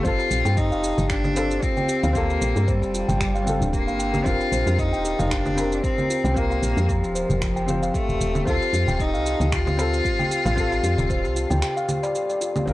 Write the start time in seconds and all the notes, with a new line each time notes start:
Already playing: C4 F4 A4
0.03 G1 C4 F4 A4 C5, kick, shaker
0.19 G4, darbuka ka, shaker
0.31 A#1 F4, shaker
0.45 G2 G5, darbuka ka, shaker
0.57 D#4 G4, kick, shaker
0.71 F1 F5, shaker
0.83 G4, shaker
0.98 G1 G4, darbuka dum, shaker
1.10 D4 G4, finger snap, kick, shaker
1.24 G4, low conga, shaker
1.34 C4 F4 A4 C5, darbuka tek, shaker
1.51 G4, shaker
1.63 C4 F4, kick, shaker
1.77 G5, low conga, shaker
1.89 G4, shaker
2.03 D2 F5, darbuka ka, shaker
2.13 A#3 C4 F4 G4 A4, kick, shaker
2.30 G4, darbuka ka, shaker
2.41 A#1 G4, shaker
2.56 G2 G4, darbuka ka, darbuka tek, shaker
2.68 G3 C5, kick, shaker
2.82 F1 G4, darbuka tek, shaker
2.94 F4, shaker
3.09 G1 G5, darbuka dum, shaker
3.20 G4, finger snap, kick, shaker
3.35 F5, shaker
3.44 C4 F4 G5, low conga, shaker
3.49 A4
3.61 D1 D4, shaker
3.73 A#3 G4, kick, shaker
3.87 G1 F5, shaker
3.99 G5, shaker
4.14 G4, low conga, shaker
4.24 F1 C4 F4 G4, kick, shaker
4.28 A#4
4.40 G4, darbuka ka, shaker
4.52 A#1 C5, shaker
4.67 F2 G4, darbuka ka, shaker
4.78 D#4 F4, kick, shaker
4.93 D#1 G5, shaker
5.05 G4, shaker
5.19 F1 F5, darbuka dum, shaker
5.31 D4 G4, finger snap, kick, shaker
5.45 G4, low conga, shaker
5.55 C4 F4 G4, darbuka tek, shaker
5.59 A#4
5.72 G4, shaker
5.84 C4 C5, kick, shaker
5.98 G4, low conga, shaker
6.10 F4, shaker
6.24 C2 G5, darbuka ka, shaker
6.34 A#3 C4 F4 G4, kick, shaker
6.38 A#4
6.50 F5, darbuka ka, shaker
6.62 A#1 G4, shaker
6.77 F2 G4, darbuka tek, shaker
6.89 F3 G4, kick, shaker
7.03 D#1 G4, darbuka tek, shaker
7.15 C5, shaker
7.29 F1 G4, darbuka dum, shaker
7.42 F4, finger snap, kick, shaker
7.56 G5, shaker
7.66 C4 F4 G4, low conga, shaker
7.70 C5
7.82 F5, shaker
7.94 A3 G4, kick, shaker
8.09 D#1 G4, shaker
8.20 D#1 G4, shaker
8.35 G4, low conga, shaker
8.45 D2 C4 F4 A4 C5, kick, shaker
8.61 G4, darbuka ka, shaker
8.73 F2 F4, shaker
8.87 D1 G5, darbuka ka, shaker
8.99 D#4 G4, kick, shaker
9.14 C2 F5, shaker
9.26 G4, shaker
9.40 D2 G4, darbuka dum, shaker
9.52 F4 G4, finger snap, kick, shaker
9.67 G4, low conga, shaker
9.77 C4 F4 A4 C5, darbuka tek, shaker
9.93 G4, shaker
10.05 F4, kick, shaker
10.19 G5, low conga, shaker
10.31 G4, shaker
10.45 A1 F5, darbuka ka, shaker
10.56 C4 F4 G4 A4, kick, shaker
10.72 G4, darbuka ka, shaker
10.83 F2 G4, shaker
10.98 D1 G4, darbuka tek, darbuka dum, shaker
11.10 C5, kick, shaker
11.24 C2 G4, darbuka tek, shaker
11.36 F4, shaker
11.50 D2 G5, darbuka dum, shaker
11.62 G4, finger snap, shaker
11.77 F5, shaker
11.89 G4, low conga, shaker
12.03 D5, darbuka tek, shaker
12.15 G4, shaker
12.30 D5, shaker
12.41 F4, shaker
12.56 G4, low conga, shaker
12.66 G1 C4 F4, kick, low conga, shaker
12.70 A#4